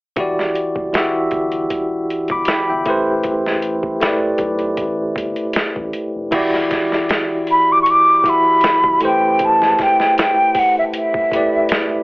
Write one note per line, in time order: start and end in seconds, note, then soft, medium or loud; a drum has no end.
0.16 0.53 E1 medium
0.16 0.89 E3 medium
0.16 0.89 E4 medium
0.16 0.90 F#4 medium
0.16 0.90 G4 medium
0.16 kick medium
0.16 closed hi-hat medium
0.20 0.91 D5 medium
0.39 snare soft
0.55 closed hi-hat soft
0.76 0.93 F#1 medium
0.76 kick medium
0.93 2.38 E3 medium
0.93 2.38 E4 medium
0.93 2.39 F#4 medium
0.93 2.39 G4 medium
0.93 snare medium
0.93 closed hi-hat medium
0.97 2.11 E5 medium
1.31 1.68 G1 medium
1.31 kick medium
1.31 closed hi-hat soft
1.52 closed hi-hat soft
1.70 2.06 E1 medium
1.70 kick medium
1.70 closed hi-hat medium
2.10 closed hi-hat medium
2.28 2.47 G1 medium
2.28 2.48 D6 medium
2.28 kick medium
2.28 closed hi-hat soft
2.32 2.48 B5 soft
2.45 2.68 B5 medium
2.45 snare medium
2.45 closed hi-hat medium
2.50 2.68 G5 medium
2.69 2.88 G1 medium
2.69 3.06 E5 soft
2.69 3.05 G5 soft
2.86 3.22 A1 medium
2.86 3.94 A3 medium
2.86 3.95 E4 medium
2.86 3.95 G4 medium
2.86 3.96 B4 medium
2.86 kick medium
2.86 closed hi-hat medium
2.90 3.96 C5 medium
3.23 3.98 A1 medium
3.23 kick medium
3.23 closed hi-hat medium
3.46 snare soft
3.62 closed hi-hat medium
3.83 kick medium
4.00 5.45 A3 medium
4.00 5.46 E4 medium
4.00 5.47 G4 medium
4.00 5.47 B4 medium
4.00 snare medium
4.00 closed hi-hat medium
4.05 5.48 D5 medium
4.23 4.30 B1 soft
4.38 4.75 B1 medium
4.38 kick medium
4.38 closed hi-hat soft
4.59 closed hi-hat soft
4.77 5.14 A1 loud
4.77 kick medium
4.77 closed hi-hat medium
5.16 5.35 G1 medium
5.16 kick medium
5.16 closed hi-hat medium
5.36 closed hi-hat soft
5.53 5.64 A1 soft
5.53 snare medium
5.53 closed hi-hat medium
5.76 5.93 A1 medium
5.76 kick medium
5.93 closed hi-hat medium
6.15 6.31 F1 medium
6.31 7.05 E1 medium
6.31 7.76 E3 medium
6.31 7.77 E4 medium
6.31 7.77 F#4 medium
6.31 7.78 G4 medium
6.31 kick medium
6.31 closed hi-hat medium
6.31 crash medium
6.35 7.78 D5 medium
6.54 snare soft
6.71 kick medium
6.71 snare soft
6.71 closed hi-hat medium
6.92 snare soft
7.09 snare medium
7.09 closed hi-hat medium
7.47 open hi-hat soft
7.52 7.74 B5 medium
7.72 7.81 D6 medium
7.82 7.92 C#6 medium
7.86 closed hi-hat medium
7.90 8.31 D6 medium
8.24 9.01 E3 medium
8.24 9.00 E4 medium
8.24 9.02 F#4 medium
8.24 9.02 G4 medium
8.24 kick medium
8.24 closed hi-hat medium
8.28 9.03 E5 medium
8.28 9.04 B5 medium
8.61 8.72 F#1 soft
8.61 snare loud
8.61 closed hi-hat medium
8.84 9.01 F#1 medium
8.84 kick medium
9.00 9.75 A1 medium
9.00 10.45 A3 medium
9.00 10.46 E4 medium
9.00 10.47 G4 medium
9.00 10.47 B4 medium
9.00 closed hi-hat medium
9.05 10.48 C5 medium
9.05 9.46 G5 medium
9.39 kick medium
9.39 closed hi-hat medium
9.45 9.84 A5 medium
9.62 snare soft
9.79 kick medium
9.79 snare soft
9.79 closed hi-hat medium
9.83 10.19 G5 medium
10.00 snare soft
10.18 10.60 G5 medium
10.18 snare medium
10.18 closed hi-hat medium
10.55 kick medium
10.55 open hi-hat soft
10.59 10.77 F#5 medium
10.78 10.84 E5 medium
10.94 12.03 E5 medium
10.94 closed hi-hat medium
11.14 kick medium
11.31 12.03 A3 medium
11.31 12.03 E4 medium
11.31 12.03 G4 medium
11.31 12.03 B4 medium
11.31 kick medium
11.31 closed hi-hat medium
11.36 12.03 D5 medium
11.69 snare loud
11.69 closed hi-hat medium